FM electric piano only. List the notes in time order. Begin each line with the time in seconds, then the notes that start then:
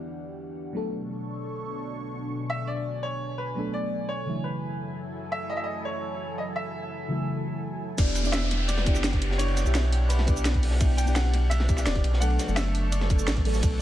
Already playing: B3 D4 E4 G4 D5
0.73 F#3 A3 B3 D4 A4
3.55 F#3 A3 B3 D4 A4
4.26 C#3 E3 F#3 A3 E4
7.08 C#3 E3 F#3 A3 E4
7.97 B3 D4 E4 G4 D5
8.23 B3 D4 E4 G4 D5
8.85 B3 D4 E4 G4 D5
9.39 B3 D4 E4 G4 D5
9.64 B3 D4 E4 G4 E5
10.26 B3 D4 E4 G4 D5
10.80 B3 D4 E4 G4 D5
11.05 B3 D4 E4 G4 D5
11.68 B3 D4 E4 G4 D5
12.21 F#3 A3 B3 D4 A4
12.47 F#3 A3 B3 D4 A4
13.09 F#3 A3 B3 D4 A4
13.44 F#3 A3 B3 D4 A4
13.62 F#3 A3 B3 D4 A4